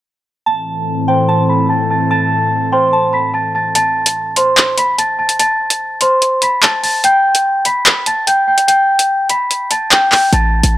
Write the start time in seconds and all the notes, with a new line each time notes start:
0.46 A2 E3 C4 A4 A5
1.08 C5 G5 C6
1.29 A5
1.49 B5 B6
1.69 A5 A6
1.90 A5 A6
2.11 A5 A6
2.72 C5 G5 C6
2.93 A5
3.13 B5 B6
3.34 A5 A6
3.55 A5 A6
3.75 A5 A6, closed hi-hat
4.06 closed hi-hat
4.36 C5 C6, closed hi-hat
4.57 clap, closed hi-hat
4.78 B5 B6, closed hi-hat
4.98 A5 A6, closed hi-hat
5.19 A5 A6
5.29 closed hi-hat
5.39 A5 A6, closed hi-hat
5.70 closed hi-hat
6.01 C5 C6, closed hi-hat
6.22 closed hi-hat
6.42 B5 B6, closed hi-hat
6.63 A5 A6, clap, closed hi-hat
6.83 A5 A6, open hi-hat
7.04 G5 G6, closed hi-hat
7.35 closed hi-hat
7.65 B5 B6, closed hi-hat
7.86 clap, closed hi-hat
8.06 A5 A6, closed hi-hat
8.27 G5 G6, closed hi-hat
8.48 G5 G6
8.58 closed hi-hat
8.68 G5 G6, closed hi-hat
8.99 closed hi-hat
9.29 B5 B6, closed hi-hat
9.51 closed hi-hat
9.71 A5 A6, closed hi-hat
9.91 G5 G6, clap, closed hi-hat
10.12 G5 G6, clap, open hi-hat
10.33 A1 A5 A6, closed hi-hat
10.63 A1, closed hi-hat